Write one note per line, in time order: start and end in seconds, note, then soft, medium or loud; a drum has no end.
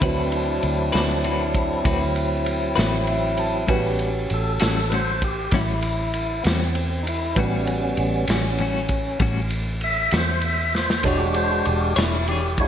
0.01 0.60 D2 medium
0.01 0.21 D3 medium
0.01 3.66 F#3 soft
0.01 0.21 C4 medium
0.01 3.65 C4 medium
0.01 3.66 C4 soft
0.01 3.66 E4 soft
0.01 3.66 E4 medium
0.01 0.21 F#4 medium
0.01 3.66 F#4 soft
0.01 0.21 B4 medium
0.01 3.66 B4 medium
0.01 kick loud
0.01 ride medium
0.06 1.84 D4 medium
0.32 ride medium
0.63 0.92 D2 medium
0.63 ride medium
0.92 1.82 D2 medium
0.92 1.13 C4 soft
0.92 1.13 F#4 medium
0.92 1.12 B4 medium
0.92 snare loud
0.92 ride medium
1.24 1.43 D3 medium
1.24 1.43 C4 medium
1.24 1.44 F#4 medium
1.24 1.44 B4 medium
1.24 ride medium
1.54 kick medium
1.54 ride medium
1.84 2.74 D2 loud
1.84 2.04 D3 medium
1.84 2.04 C4 loud
1.84 2.04 F#4 medium
1.84 2.05 B4 loud
1.84 kick loud
1.84 ride medium
2.16 ride soft
2.46 ride medium
2.76 3.66 A1 loud
2.76 2.96 C4 medium
2.76 2.96 F#4 medium
2.76 2.95 B4 medium
2.76 snare loud
2.76 ride medium
3.07 3.37 E5 medium
3.07 ride medium
3.37 3.68 A5 medium
3.37 ride medium
3.67 4.26 A1 medium
3.67 3.87 A2 medium
3.67 3.87 G3 medium
3.67 4.11 G3 medium
3.67 4.11 B3 soft
3.67 7.33 C#4 medium
3.67 3.88 C#4 medium
3.67 4.10 C#4 soft
3.67 3.88 F#4 loud
3.67 7.33 F#4 medium
3.67 7.33 G4 medium
3.67 7.33 B4 medium
3.67 kick loud
3.67 ride medium
3.99 ride soft
4.30 4.59 A1 medium
4.30 ride medium
4.34 4.92 A4 loud
4.59 5.50 A1 medium
4.59 4.81 G3 soft
4.59 4.80 C#4 medium
4.59 4.79 F#4 medium
4.59 snare loud
4.59 ride medium
4.90 5.10 A2 medium
4.90 5.11 G3 medium
4.90 5.11 C#4 medium
4.90 5.11 F#4 medium
4.90 4.93 B4 medium
4.90 ride medium
4.94 5.23 C5 medium
5.22 5.53 G4 medium
5.22 kick medium
5.22 ride medium
5.51 6.41 A1 loud
5.51 5.72 A2 medium
5.51 5.72 G3 medium
5.51 5.72 C#4 medium
5.51 6.43 E4 medium
5.51 5.73 F#4 medium
5.51 kick loud
5.51 snare soft
5.51 ride medium
5.82 ride medium
6.14 ride medium
6.43 7.33 E2 loud
6.43 6.47 B3 medium
6.43 6.64 F#4 medium
6.43 snare loud
6.43 ride medium
6.47 6.65 G3 soft
6.47 7.06 C4 medium
6.47 6.65 C#4 medium
6.75 ride medium
7.03 7.07 D#4 medium
7.07 7.37 E4 loud
7.07 ride medium
7.35 7.94 A1 medium
7.35 7.55 A2 medium
7.35 7.56 G3 medium
7.35 8.26 G3 medium
7.35 8.25 B3 medium
7.35 11.00 C#4 medium
7.35 7.56 C#4 medium
7.35 11.01 F#4 medium
7.35 7.57 F#4 medium
7.35 11.01 G4 medium
7.35 11.01 B4 medium
7.35 kick loud
7.35 ride medium
7.39 9.19 C#4 loud
7.67 ride medium
7.97 8.26 A1 medium
7.97 ride medium
8.28 9.17 A1 medium
8.28 8.49 G3 soft
8.28 8.48 C#4 medium
8.28 8.48 F#4 medium
8.28 snare loud
8.28 ride medium
8.58 8.78 A2 medium
8.58 8.79 G3 medium
8.58 8.79 C#4 medium
8.58 8.79 F#4 medium
8.58 ride medium
8.89 kick medium
8.89 ride medium
9.20 10.09 A1 loud
9.20 9.39 A2 medium
9.20 9.39 G3 medium
9.20 9.40 C#4 medium
9.20 9.40 F#4 medium
9.20 kick loud
9.20 ride medium
9.50 ride medium
9.81 10.13 E5 loud
9.81 ride medium
10.11 11.01 E2 medium
10.11 10.33 G3 soft
10.11 10.32 C#4 soft
10.11 10.31 F#4 medium
10.11 snare loud
10.11 ride medium
10.16 10.44 C5 medium
10.41 ride medium
10.46 10.75 E5 medium
10.75 11.05 C5 medium
10.75 snare medium
10.90 snare loud
11.03 11.62 E1 medium
11.03 11.24 E3 medium
11.03 11.94 G#3 soft
11.03 12.68 D4 medium
11.03 11.94 D4 soft
11.03 11.24 D4 medium
11.03 12.68 F#4 medium
11.03 11.94 F#4 medium
11.03 12.68 G#4 soft
11.03 12.68 C#5 medium
11.03 kick loud
11.03 ride medium
11.07 11.36 G4 medium
11.07 11.25 G#4 medium
11.07 11.25 C#5 loud
11.34 11.66 C5 loud
11.34 ride medium
11.65 11.95 E1 medium
11.65 11.96 G4 medium
11.65 ride medium
11.96 12.68 E1 medium
11.96 12.17 D4 soft
11.96 12.27 E4 loud
11.96 12.16 G#4 soft
11.96 12.15 C#5 medium
11.96 snare loud
11.96 ride loud
12.28 12.47 E3 medium
12.28 12.48 D4 medium
12.28 12.58 G4 medium
12.28 12.48 G#4 medium
12.28 ride medium
12.32 12.48 C#5 medium
12.58 12.68 G#3 soft
12.58 12.68 D4 soft
12.58 12.68 E4 medium
12.58 12.68 F#4 medium
12.58 12.68 C#5 soft
12.58 kick medium
12.58 ride medium